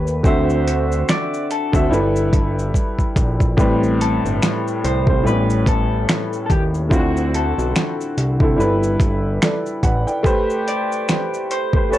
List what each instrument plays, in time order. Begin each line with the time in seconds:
Already playing: analog synth bass D#2, upright piano A3 G4 B4 C#5, clean electric guitar B4
0.07 shaker
0.23 analog synth bass D2, upright piano D3 C4 F#4 E5, clean electric guitar C5, kick, shaker
0.50 shaker
0.68 closed hi-hat, shaker
0.92 shaker
1.09 clean electric guitar D5, finger snap, snare, shaker
1.34 shaker
1.51 clean electric guitar A4, closed hi-hat, shaker
1.72 analog synth bass D2, upright piano D3 C4 F#4 E5, kick, shaker
1.90 analog synth bass G1, upright piano G3 E4 A4 B4, shaker
2.16 shaker
2.33 analog synth bass G1, kick, closed hi-hat, shaker
2.59 shaker
2.74 kick, shaker
2.99 kick, shaker
3.16 analog synth bass A#1, kick, closed hi-hat, shaker
3.40 kick, shaker
3.57 analog synth bass A1, upright piano A2 G3 C4 B4, kick, shaker
3.83 shaker
4.01 clean electric guitar A4, closed hi-hat, shaker
4.25 analog synth bass G1, shaker
4.42 finger snap, snare, shaker
4.68 shaker
4.84 analog synth bass C2, clean electric guitar C5, closed hi-hat, shaker
5.06 upright piano A2 G3 C4 C5, kick
5.23 analog synth bass A1, upright piano A2 G3 B3 B4, clean electric guitar B4, shaker
5.32 upright piano C#4
5.50 shaker
5.66 analog synth bass A1, clean electric guitar A4, kick, closed hi-hat, shaker
6.09 finger snap, snare, shaker
6.33 shaker
6.46 clean electric guitar A4, kick
6.50 analog synth bass D#2, clean electric guitar G4, closed hi-hat, shaker
6.74 shaker
6.89 analog synth bass D2, upright piano D3 C4 E4 F4, kick, shaker
6.94 clean electric guitar F#4
6.99 upright piano F#4
7.17 shaker
7.34 clean electric guitar A4, closed hi-hat, shaker
7.58 analog synth bass B1, shaker
7.76 finger snap, snare, shaker
8.01 shaker
8.18 analog synth bass C2, closed hi-hat, shaker
8.40 upright piano D3 C4 E4 A4, kick
8.56 analog synth bass G1, upright piano G3 E4 A4 B4, shaker
8.83 shaker
9.00 analog synth bass G1, kick, closed hi-hat, shaker
9.42 upright piano A4 D5, finger snap, snare, shaker
9.66 shaker
9.83 analog synth bass A1, upright piano B4 F#5, kick, closed hi-hat, shaker
10.07 upright piano D5 G5, shaker
10.23 upright piano A3 G4 B4 C5, kick, shaker
10.50 shaker
10.68 clean electric guitar D5, closed hi-hat, shaker
10.92 shaker
11.09 finger snap, snare, shaker
11.34 shaker
11.51 clean electric guitar C5, closed hi-hat, shaker
11.73 upright piano A3 G4 B4 C5, kick
11.89 upright piano A3 G4 B4 C#5, clean electric guitar A4, shaker